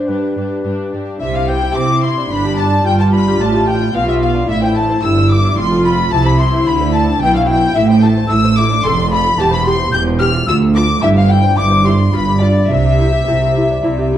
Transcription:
Already playing: lute D4 G4
0.08 cello section G2, lute G2, viola section D4, violin section D4 G4, flute B4
0.36 cello section G2, lute G2, viola section D4, violin section D4 G4
0.64 lute G2, cello section G2, violin section D4 G4, viola section D4
0.92 cello section G2, lute G2, violin section D4 G4, viola section D4
1.20 double bass section C2, cello section C3, lute C3, viola section E4, flute E5, violin section E5
1.34 lute G4, flute F5, violin section F5
1.48 lute C4, flute G5, violin section G5
1.62 lute G4
1.75 double bass section C3, cello section C4, lute C4, flute D6, violin section D6
1.91 lute G4
2.03 lute E4, violin section C6, flute C6
2.18 lute D4
2.30 double bass section G1, cello section G2, lute G2, viola section D4, violin section B5, flute B5
2.45 lute G4
2.57 lute D4, violin section A5, flute A5
2.72 lute G4
2.85 double bass section G1, cello section G2, lute G2, viola section F4, flute G5, violin section G5
2.98 lute G4, flute A5, violin section A5
3.12 lute D4, violin section B5, flute B5
3.28 lute G4
3.40 double bass section A1, cello section A2, lute A2 D4, flute A5, violin section A5
3.54 lute G4
3.67 lute F4, flute G5, violin section G5
3.81 lute E4
3.94 double bass section B1, lute B2 F4, cello section B2, viola section F4, violin section F5, flute F5
4.07 lute G4, flute E5, violin section E5
4.21 lute F4, violin section F5, flute F5
4.34 lute D4
4.48 double bass section A1, lute A2, cello section A2, viola section E4, violin section E5, flute E5
4.62 lute C5, flute G5, violin section G5
4.76 lute A3, flute A5, violin section A5
4.89 lute C5
5.03 double bass section G1, lute G2 A3, cello section G2, viola section E4, violin section E6, flute E6
5.18 lute C5
5.30 lute E4, violin section D6, flute D6
5.44 lute D4
5.57 double bass section F1, lute F2, cello section F2, viola section F4, violin section C6, flute C6
5.72 lute A4
5.84 lute F4, violin section B5, flute B5
5.99 lute A4
6.11 double bass section C2, cello section C3, lute C3, viola section E4, violin section A5, flute A5
6.26 lute C5, violin section B5, flute B5
6.39 violin section C6, flute C6
6.54 lute C5
6.67 double bass section D2, cello section D3, lute D3, flute B5, violin section B5
6.81 lute C5
6.94 lute E4, flute A5, violin section A5
7.09 lute D4
7.21 double bass section B1, cello section B2, lute B2 E4, viola section E4, violin section G5, flute G5
7.34 lute C5, flute F5, violin section F5
7.47 lute E4, violin section G5, flute G5
7.75 double bass section A1, cello section A2, lute A2, viola section E4, flute E5, violin section E5
7.87 lute C5, flute G5, violin section G5
8.02 lute A3, viola section E4, violin section A5, flute A5
8.17 lute C5
8.28 double bass section A1, lute A2 A3, cello section A2, viola section E4, flute E6, violin section E6
8.32 violin section E6
8.45 lute C5
8.56 viola section E4, lute E4, violin section D6, flute D6
8.71 lute D4
8.83 double bass section F1, lute F2, cello section F2, viola section A4, violin section C6, flute C6
8.98 lute A4
9.10 lute F4, viola section A4, flute B5, violin section B5
9.24 lute A4
9.37 double bass section E1, lute E2, cello section E2, viola section G4, flute A5, violin section A5
9.51 lute C5, flute B5, violin section B5
9.64 viola section G4, flute C6, violin section C6
9.79 lute C5
9.92 double bass section E1, lute E2, cello section E2, viola section G4, flute G6, violin section G6
10.07 lute C5
10.19 viola section G4, lute G4, flute F6, violin section F6
10.34 lute F4
10.46 cello section D2, lute D2, double bass section D2, viola section F4, flute E6, violin section E6
10.62 lute A4
10.75 lute A3, viola section F4, flute D6, violin section D6
10.89 lute A4
11.02 double bass section G1, lute G2, cello section G2, viola section E4, flute E5, violin section E5
11.17 lute C5, flute F5, violin section F5
11.30 viola section E4, lute E4, flute G5, violin section G5
11.43 lute C5
11.57 double bass section G1, lute G2 E4, cello section G2, viola section E4, flute D6, violin section D6
11.71 lute C5
11.84 viola section E4, lute G4, flute C6, violin section C6
11.99 lute F4
12.12 double bass section G1, lute G2, cello section G2, viola section F4, flute B5, violin section B5
12.28 lute D5
12.40 viola section F4, lute F4, flute D5, violin section D5
12.57 lute D5
12.68 double bass section C2, cello section C3, lute C3, viola section E4, flute E5, violin section E5
12.84 lute G4
12.98 lute C4, viola section E4
13.13 lute G4
13.27 double bass section C2, cello section C3, lute C3 C4, viola section E4
13.42 lute G4
13.55 viola section E4, lute E4
13.71 lute D4
13.83 double bass section C2, lute C3 E4, cello section C3, viola section E4
13.98 lute G4
14.12 viola section E4, lute E4

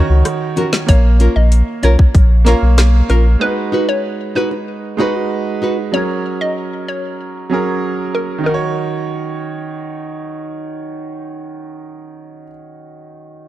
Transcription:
Already playing: grand piano D#3 D#4 F#4 C#5
0.10 sub bass C#2
0.25 cross-stick, closed hi-hat
0.56 nylon-string guitar C#4 F#4 A#4, closed hi-hat, low bongo
0.72 snare, high bongo
0.87 sub bass A#1, grand piano A#3 A#4 C#5 F5, synth pluck C#5, kick, closed hi-hat
1.19 nylon-string guitar C#4 F4 A#4, closed hi-hat
1.36 sub bass A#1, synth pluck D#5
1.52 closed hi-hat
1.83 sub bass B1, nylon-string guitar C#4 F4 A#4, synth pluck C#5, closed hi-hat
1.99 muted nylon-string guitar stroke, kick
2.15 sub bass A#1, kick, closed hi-hat
2.45 grand piano A#3 A#4 C#5 F5, nylon-string guitar C#4 F4 A#4, snare, closed hi-hat
2.62 sub bass B1
2.78 cross-stick, snare, closed hi-hat
3.09 sub bass A#1, nylon-string guitar C#4 F4 A#4, synth pluck A#4, closed hi-hat
3.39 grand piano G#3 D#4 F#4 B4, synth pluck B4
3.72 nylon-string guitar D#4 F#4 B4
3.89 synth pluck C#5
4.35 nylon-string guitar D#4 F#4 B4, synth pluck B4
4.51 muted nylon-string guitar stroke
4.97 grand piano G#3 D#4 F#4 B4, nylon-string guitar D#4 F#4 B4
5.62 nylon-string guitar D#4 F#4 B4
5.92 grand piano F#3 C#4 G#4 A#4, synth pluck C#5
6.41 synth pluck D#5
6.88 synth pluck C#5
7.50 grand piano F#3 C#4 G#4 A#4
8.15 synth pluck A#4
8.38 grand piano D#3
8.44 grand piano D#4, synth pluck A#4
8.49 grand piano F#4
8.54 grand piano C#5

